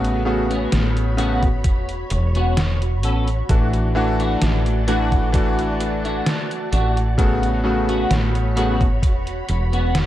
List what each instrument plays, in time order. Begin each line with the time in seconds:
Already playing: fretless electric bass A1, electric grand piano C#3 A3 B3 F#4, string machine F#4 C#5 B5
0.04 closed hi-hat
0.25 electric grand piano C#3 A3 B3 F#4, muted clean electric guitar stroke
0.50 clean electric guitar B3 C#4 G#4, closed hi-hat
0.72 fretless electric bass A1, snare, closed hi-hat
0.97 closed hi-hat
1.17 electric grand piano C#3 A3 B3 F#4, clean electric guitar B3 C#4 F#4, closed hi-hat
1.43 kick, closed hi-hat
1.64 fretless electric bass E1, kick, closed hi-hat
1.89 closed hi-hat
2.10 fretless electric bass E1, muted clean electric guitar stroke, closed hi-hat
2.35 clean electric guitar B3 C#4 F#4, closed hi-hat
2.57 snare, closed hi-hat
2.82 closed hi-hat
3.03 fretless electric bass A1, clean electric guitar B3 C#4 A4, closed hi-hat
3.28 closed hi-hat
3.49 fretless electric bass A1, electric grand piano E3 A3 D4 F#4, string machine D5 A5, kick, closed hi-hat
3.73 closed hi-hat
3.95 electric grand piano E3 A3 D4 F#4, muted clean electric guitar stroke
4.19 clean electric guitar A3 D4 F#4, closed hi-hat
4.42 fretless electric bass A1, snare, closed hi-hat
4.66 closed hi-hat
4.87 electric grand piano E3 A3 D4 F#4, clean electric guitar A3 D4 F#4, closed hi-hat
5.12 kick, closed hi-hat
5.32 electric grand piano E3 A3 D4 F#4, kick, closed hi-hat
5.59 closed hi-hat
5.80 muted clean electric guitar stroke, closed hi-hat
6.04 clean electric guitar A3 D4 F#4, closed hi-hat
6.26 snare, closed hi-hat
6.51 closed hi-hat
6.72 fretless electric bass A1, clean electric guitar A3 D4 F#4, closed hi-hat
6.97 closed hi-hat
7.18 electric grand piano C#3 A3 B3 F#4, string machine C#5 B5, kick, closed hi-hat
7.43 closed hi-hat
7.64 electric grand piano C#3 A3 B3 F#4, muted clean electric guitar stroke
7.88 clean electric guitar B3 C#4 F#4, closed hi-hat
8.11 fretless electric bass A1, snare, closed hi-hat
8.35 closed hi-hat
8.56 electric grand piano C#3 A3 B3 F#4, clean electric guitar B3 C#4 F#4, closed hi-hat
8.81 kick, closed hi-hat
9.03 fretless electric bass E1, kick, closed hi-hat
9.27 closed hi-hat
9.49 fretless electric bass E1, muted clean electric guitar stroke, closed hi-hat
9.72 clean electric guitar B3 C#4 F#4, closed hi-hat
9.95 snare, closed hi-hat